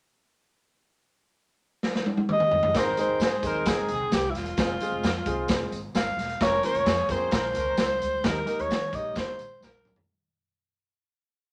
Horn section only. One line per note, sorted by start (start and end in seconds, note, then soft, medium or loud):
2.74 3.18 D#3 loud
2.74 3.18 C4 medium
2.74 3.18 A#4 loud
3.22 3.40 D#3 medium
3.22 3.40 C4 medium
3.22 3.40 G#4 medium
3.44 3.63 G#3 loud
3.44 3.62 D#4 loud
3.44 3.62 C5 loud
3.69 3.86 A#3 medium
3.69 3.86 G4 medium
3.69 3.87 A#4 loud
3.92 4.09 D#3 medium
3.92 4.09 C4 medium
3.92 4.09 G#4 loud
6.42 6.84 F3 loud
6.42 6.85 C#4 loud
6.42 6.84 A#4 loud
6.84 7.04 G#3 medium
6.84 7.04 F4 medium
6.84 7.04 G#4 medium
7.08 7.27 C4 medium
7.08 7.27 G#4 loud
7.08 7.27 C5 loud
7.31 7.51 F3 medium
7.31 7.51 C#4 medium
7.31 7.50 A#4 medium
7.55 7.74 F3 medium
7.55 7.74 C#4 medium
7.55 7.74 A#4 medium